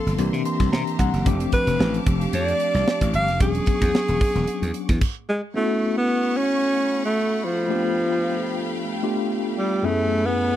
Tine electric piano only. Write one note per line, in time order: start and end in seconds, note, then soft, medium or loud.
0.00 0.16 F3 medium
0.00 0.16 A#3 medium
0.00 0.17 C4 medium
0.00 0.17 D4 medium
0.00 0.17 A4 medium
0.18 1.23 E3 medium
0.18 1.24 A#3 medium
0.18 1.24 C4 medium
0.18 1.24 D4 medium
0.18 1.25 G4 medium
0.46 0.71 C6 medium
0.72 0.97 A#5 medium
0.99 1.24 F#5 medium
1.25 3.36 F3 medium
1.25 3.36 A3 medium
1.25 3.37 C4 medium
1.25 3.37 D4 medium
1.25 3.37 G4 medium
3.40 4.98 F#3 medium
3.40 4.98 B3 medium
3.40 4.98 C#4 medium
3.40 4.99 D4 medium
3.40 4.99 G#4 medium
5.54 7.65 A3 medium
5.54 7.65 B3 medium
5.54 7.65 C#4 medium
5.54 7.66 E4 medium
5.54 7.66 F#4 medium
7.68 9.00 A3 medium
7.68 7.76 A#3 soft
7.68 9.01 D4 medium
7.68 9.01 F4 medium
7.68 9.01 G4 medium
7.75 9.02 B3 medium
9.03 9.82 A3 medium
9.03 9.82 B3 medium
9.03 9.84 D4 medium
9.03 9.84 F4 medium
9.03 9.84 G4 medium
9.82 10.56 F#2 medium
9.82 10.56 A3 medium
9.82 10.56 B3 medium
9.82 10.56 C#4 medium
9.82 10.56 E4 medium
9.82 10.56 G#4 medium